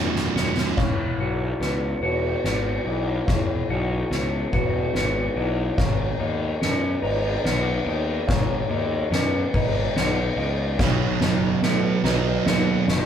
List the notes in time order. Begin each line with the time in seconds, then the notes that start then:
Already playing: E2 F#3 A3 C#4 F#4 C#5
0.16 snare
0.35 E1 C#4, snare
0.57 snare
0.77 E1 E3 C#5, kick, snare, crash
1.18 B1 F#4, ride
1.60 C#2 B3 B4, snare, ride
2.01 E1 F#4 B4, ride
2.44 G#1 B3, snare, ride
2.85 B1 E3 D#5, ride
3.27 E1 E3 C#5, kick, snare, ride
3.69 B1 F#4, ride
4.10 C#2 B3 B4, snare, ride
4.52 E1 F#4 B4, kick, ride
4.94 G#1 B3, snare, ride
5.36 B1 E3 D#5, ride
5.78 G#1 G#2 C#5, kick, snare, ride
6.19 D#2 D#4, ride
6.61 F#2 B3 B4, snare, ride
7.02 G#1 D#4 B4, ride
7.44 B1 B3, snare, ride
7.86 D#2 D#3 D#5, ride
8.28 G#1 G#2 C#5, kick, snare, ride
8.70 D#2 D#4, ride
9.11 F#2 B3 B4, snare, ride
9.54 G#1 D#4 B4, kick, ride
9.96 B1 B3, snare, ride
10.37 C#2 D#3 D#5, ride
10.79 B1 B2 F#3 B3 C#5, kick, snare, crash
11.20 F#1 B2 F#3 D#4, snare, ride
11.62 A2 B2 F#3 B3 B4, snare, ride
12.04 B1 B2 F#3 B3 D#4 B4, snare, ride
12.46 D#2 B2 F#3 B3, snare, ride
12.88 F#1 B2 D#5, snare, ride